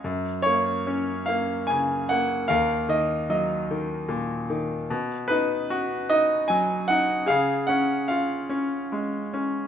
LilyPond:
<<
  \new Staff \with { instrumentName = "Grand piano" } { \time 3/4 \key fis \major \tempo 4 = 75 << { r8 cis''4 eis''8 gis''8 fis''8 | eis''8 dis''8 dis''4 r4 | r8 b'4 dis''8 gis''8 fis''8 | eis''8 fis''8 eis''4 r4 | } \\ { r2. | ais'4. r4. | r2. | gis'4. r4. | } >> }
  \new Staff \with { instrumentName = "Grand piano" } { \time 3/4 \key fis \major fis,8 ais8 cis'8 ais8 cis8 ais8 | dis,8 dis8 fis8 dis8 ais,8 dis8 | b,8 dis'8 fis'8 dis'8 fis8 dis'8 | cis8 cis'8 eis'8 cis'8 gis8 cis'8 | }
>>